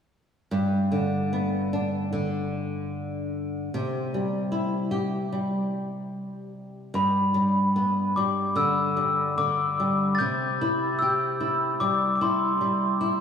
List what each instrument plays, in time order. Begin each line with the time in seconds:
0.51 nylon-string guitar G2
0.92 nylon-string guitar D3
1.33 nylon-string guitar B3
1.73 nylon-string guitar D4
2.13 nylon-string guitar D3
3.74 nylon-string guitar C3
4.14 nylon-string guitar G3
4.52 nylon-string guitar E4
4.91 nylon-string guitar G4
5.32 nylon-string guitar G3
6.94 nylon-string guitar G2, glockenspiel B5
7.34 nylon-string guitar G3
7.76 nylon-string guitar B3
8.16 nylon-string guitar G3, glockenspiel D6
8.56 nylon-string guitar D3, glockenspiel E6
8.97 nylon-string guitar G3
9.38 nylon-string guitar D3, glockenspiel D6
9.80 nylon-string guitar G3
10.15 glockenspiel G6 A6
10.20 nylon-string guitar C3
10.61 nylon-string guitar E4
10.99 nylon-string guitar G4, glockenspiel E6
11.40 nylon-string guitar E4
11.80 nylon-string guitar G3, glockenspiel D6
12.16 glockenspiel D6
12.21 nylon-string guitar E4, glockenspiel C6
12.61 nylon-string guitar G3
13.01 nylon-string guitar E4